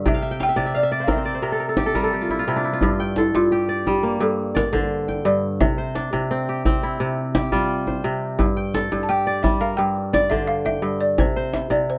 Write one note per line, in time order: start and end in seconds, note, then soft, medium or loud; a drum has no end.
0.00 0.10 G2 medium
0.00 0.10 D3 medium
0.00 0.20 E5 medium
0.05 0.55 C3 medium
0.05 0.42 E5 medium
0.05 0.31 G5 medium
0.05 djembe tone medium
0.05 djembe bass medium
0.14 0.39 F5 medium
0.22 0.46 E5 medium
0.31 1.24 G5 medium
0.40 0.72 F5 medium
0.40 0.77 G5 medium
0.40 djembe slap medium
0.49 0.66 E5 medium
0.56 1.41 C3 medium
0.56 0.91 D5 medium
0.56 djembe tone soft
0.66 0.83 E5 medium
0.74 1.04 D5 medium
0.74 1.74 F5 medium
0.74 djembe slap soft
0.83 1.87 E5 medium
0.92 1.25 D5 medium
1.00 1.17 C5 medium
1.00 1.10 F5 medium
1.07 2.88 C4 medium
1.07 1.42 A#4 medium
1.07 djembe slap soft
1.07 djembe tone medium
1.07 djembe bass medium
1.12 2.45 E5 medium
1.17 1.34 C5 medium
1.25 2.36 D5 medium
1.25 djembe slap soft
1.34 2.53 C5 medium
1.42 2.46 C3 medium
1.42 1.59 A#4 medium
1.42 djembe slap soft
1.52 1.68 A4 medium
1.60 1.92 A#4 medium
1.69 1.86 A4 medium
1.77 2.12 G4 medium
1.77 djembe slap medium
1.77 djembe tone medium
1.86 2.03 A4 medium
1.95 2.87 G3 medium
1.95 3.23 A#4 medium
1.95 djembe bass medium
2.04 3.17 A4 medium
2.13 3.51 G4 medium
2.21 2.39 F4 medium
2.29 2.47 E4 medium
2.29 djembe tone medium
2.39 2.70 F4 medium
2.48 2.87 C3 medium
2.48 2.64 E4 medium
2.56 4.24 D4 medium
2.64 4.21 E4 medium
2.73 4.25 F4 medium
2.81 3.33 G2 medium
2.81 djembe tone medium
2.81 djembe bass medium
2.99 3.93 G5 medium
2.99 djembe slap soft
3.16 3.36 E4 medium
3.16 4.09 A4 medium
3.16 djembe slap medium
3.34 4.19 G2 medium
3.34 3.89 F4 medium
3.34 djembe tone soft
3.52 4.93 G4 medium
3.69 4.54 D5 medium
3.86 4.78 G3 medium
3.86 4.23 G4 medium
3.86 djembe tone medium
4.03 5.96 A#3 medium
4.20 5.24 G2 medium
4.20 4.54 A4 medium
4.40 djembe slap soft
4.55 5.28 A#4 medium
4.55 5.66 D5 medium
4.55 djembe slap medium
4.55 djembe tone medium
4.73 5.65 D3 medium
4.73 5.77 C5 medium
4.73 djembe bass medium
5.08 6.01 G5 medium
5.08 djembe tone medium
5.25 5.65 G2 medium
5.25 5.61 D5 medium
5.61 6.12 C3 medium
5.61 7.30 E5 medium
5.61 djembe tone medium
5.61 djembe bass medium
5.78 6.97 C5 medium
5.78 djembe slap soft
5.95 7.63 D4 medium
5.95 djembe slap medium
6.13 6.99 C3 medium
6.13 djembe tone medium
6.31 6.65 C4 medium
6.49 7.34 G4 medium
6.65 8.46 C4 medium
6.65 djembe tone medium
6.65 djembe bass medium
6.83 7.58 E4 medium
7.00 8.03 C3 medium
7.18 djembe slap soft
7.35 8.76 G4 medium
7.35 djembe slap medium
7.35 djembe tone medium
7.52 8.44 G3 medium
7.52 9.03 F4 medium
7.52 djembe bass medium
7.87 9.06 C5 medium
7.87 djembe tone medium
8.04 8.44 C3 medium
8.39 8.91 G2 medium
8.39 djembe tone medium
8.39 djembe bass medium
8.57 9.50 G5 medium
8.57 djembe slap soft
8.74 9.67 A4 medium
8.74 djembe slap medium
8.92 9.77 G2 medium
8.92 djembe tone medium
9.03 9.09 A5 medium
9.09 10.51 G4 medium
9.09 9.45 G5 medium
9.27 10.13 D5 medium
9.43 10.36 G3 medium
9.43 9.61 E5 medium
9.43 djembe tone medium
9.43 djembe bass medium
9.61 10.88 A#4 medium
9.61 9.79 F5 medium
9.77 10.81 G2 medium
9.77 10.14 G5 medium
9.97 djembe slap soft
10.13 11.24 D5 medium
10.13 10.30 D5 medium
10.13 djembe slap medium
10.13 djembe tone medium
10.30 11.23 D3 medium
10.30 11.36 C5 medium
10.30 10.46 E5 medium
10.30 djembe bass medium
10.47 10.64 F5 medium
10.65 10.98 E5 medium
10.65 11.58 G5 medium
10.65 djembe tone medium
10.82 11.23 G2 medium
11.00 11.19 D5 medium
11.18 11.69 C3 medium
11.18 11.55 C5 medium
11.18 djembe slap soft
11.18 djembe tone medium
11.18 djembe bass medium
11.36 11.98 C5 medium
11.54 11.72 E5 medium
11.54 djembe slap medium
11.70 11.98 C3 medium
11.70 11.89 D5 medium
11.70 djembe tone medium
11.90 11.98 C5 medium